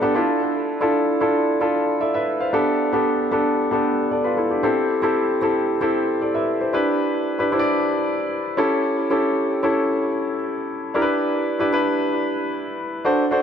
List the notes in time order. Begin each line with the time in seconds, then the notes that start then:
Already playing: B3 D4 G4 A4 B4
0.02 B3 D4 G4 A4
0.15 D4 E4 F4 A4
0.81 D4 E4 F4 A4
1.21 D4 E4 F4 A4
1.60 D4 E4 F4 A4
2.01 A4 D5 E5
2.14 B4 E5
2.40 C5 F5
2.53 B3 D4 G4 A4
2.93 B3 D4 G4 A4
3.31 B3 D4 G4 A4
3.71 B3 D4 G4 A4
4.11 A4 D5
4.24 F4 B4
4.37 E4 A4
4.50 D4 G4
4.63 C4 E4 G4 A4
5.02 C4 E4 G4 A4
5.42 C4 E4 G4 A4
5.81 C4 E4 G4 A4
6.22 A4 D5
6.34 B4 E5
6.61 G4 C5
6.73 D4 E4 G4 B4
7.39 D4 E4 G4 B4
7.52 D4 E4 G4 C5
7.59 D5
8.57 C#4 E4 G4 A4
9.10 C#4 E4 G4 A4
9.63 C#4 E4 G4 A4
10.94 D4 E4 G4 A#4
11.02 B4
11.59 D4 E4 G4 B4
11.73 D4 E4 G4 B4
13.05 D4 F#4 A4 C5
13.31 D4 F#4 A4 C5